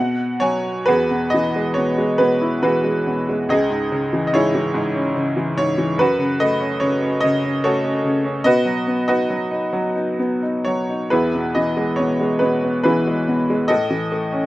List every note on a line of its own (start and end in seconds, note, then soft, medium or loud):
0.00 0.85 B2 medium
0.00 0.38 F#5 medium
0.40 0.86 F#3 soft
0.40 0.89 C#5 medium
0.40 0.85 G#5 medium
0.86 3.46 E2 medium
0.86 2.16 F#4 medium
0.86 2.16 G#4 medium
0.86 1.29 B4 medium
1.11 1.76 B2 soft
1.30 1.77 D#5 medium
1.34 2.61 E3 soft
1.56 1.97 G#3 soft
1.74 2.18 B2 soft
1.74 2.15 C#5 medium
1.98 2.82 G#3 soft
2.18 3.05 B2 medium
2.18 2.61 B4 medium
2.42 3.46 E4 soft
2.63 3.47 E3 soft
2.63 3.46 F#4 soft
2.63 3.46 G#4 soft
2.63 3.52 B4 medium
2.84 3.27 G#3 soft
3.07 3.48 B2 soft
3.29 3.49 G#3 soft
3.49 5.95 C#2 medium
3.49 4.33 G#4 medium
3.49 4.26 D#5 medium
3.70 4.32 G#2 soft
3.92 5.14 C#3 medium
4.13 4.53 E3 soft
4.27 4.34 D#5 medium
4.33 4.73 G#2 soft
4.33 5.54 E4 medium
4.33 5.54 G#4 medium
4.33 5.53 C#5 medium
4.55 5.35 E3 soft
4.74 5.57 G#2 medium
4.95 5.95 C#4 soft
5.15 5.96 C#3 soft
5.37 5.76 E3 soft
5.58 5.98 G#2 medium
5.58 6.00 C#5 medium
5.78 5.98 E3 soft
5.98 8.41 F#2 medium
5.98 7.20 F#4 medium
5.98 6.42 B4 medium
6.19 6.80 C#3 soft
6.40 7.63 A3 medium
6.40 6.83 D#5 medium
6.61 7.01 C#4 medium
6.80 7.22 C#3 medium
6.80 7.23 C#5 medium
7.02 7.43 C#4 medium
7.21 8.03 C#3 medium
7.21 7.60 D#5 medium
7.44 7.83 C#4 soft
7.64 8.43 A3 medium
7.64 8.42 F#4 medium
7.64 8.42 A4 medium
7.64 8.48 C#5 medium
7.85 8.24 C#4 medium
8.05 8.44 C#3 soft
8.25 8.45 C#4 soft
8.44 11.06 B2 medium
8.44 9.07 F#4 medium
8.44 9.07 B4 medium
8.44 9.06 D#5 medium
8.65 9.28 F#3 soft
8.87 10.18 B3 soft
9.08 9.49 D#4 medium
9.08 10.62 F#4 medium
9.08 10.62 B4 medium
9.08 10.70 D#5 medium
9.30 9.71 F#3 soft
9.51 9.94 D#4 soft
9.73 10.65 F#3 medium
9.95 10.41 D#4 soft
10.19 11.08 B3 soft
10.43 10.88 D#4 soft
10.65 11.10 F#3 soft
10.65 11.07 C#5 medium
10.89 11.10 D#4 soft
11.10 13.66 E2 medium
11.10 12.38 E4 medium
11.10 12.38 G#4 medium
11.10 11.56 B4 medium
11.35 11.98 B2 soft
11.55 12.84 E3 soft
11.55 11.99 D#5 medium
11.77 12.19 G#3 soft
11.96 12.40 B2 soft
11.96 12.41 C#5 medium
12.21 13.06 G#3 soft
12.39 13.27 B2 medium
12.39 12.82 B4 medium
12.64 13.67 B3 soft
12.84 13.67 E3 medium
12.84 13.65 E4 soft
12.84 13.65 G#4 soft
12.84 13.71 B4 medium
13.07 13.48 G#3 soft
13.28 13.69 B2 soft
13.50 13.69 G#3 medium
13.68 14.46 A2 medium
13.68 14.46 A4 medium
13.68 14.46 D#5 medium
13.90 14.46 E3 soft
14.12 14.46 A3 medium
14.32 14.46 C#4 soft